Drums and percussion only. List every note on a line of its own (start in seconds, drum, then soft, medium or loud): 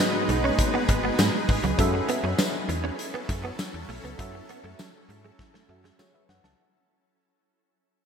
0.29 closed hi-hat medium
0.59 kick loud
0.59 closed hi-hat medium
0.89 kick loud
0.89 closed hi-hat medium
1.19 snare loud
1.19 closed hi-hat medium
1.19 tambourine medium
1.49 kick loud
1.49 open hi-hat medium
1.64 closed hi-hat medium
1.79 kick loud
1.79 closed hi-hat medium
2.09 closed hi-hat medium
2.38 snare loud
2.38 closed hi-hat medium
2.38 tambourine medium
2.69 closed hi-hat medium
2.99 closed hi-hat medium
3.29 kick loud
3.29 closed hi-hat medium
3.59 snare loud
3.59 closed hi-hat medium
3.59 tambourine medium
3.89 open hi-hat medium
4.04 closed hi-hat soft
4.19 kick loud
4.19 closed hi-hat medium
4.49 closed hi-hat medium
4.79 snare loud
4.79 closed hi-hat medium
4.79 tambourine medium
5.10 closed hi-hat medium
5.39 kick loud
5.39 snare medium
5.54 snare medium
5.84 snare medium
5.99 snare medium
5.99 tambourine medium
6.29 snare loud
6.44 snare medium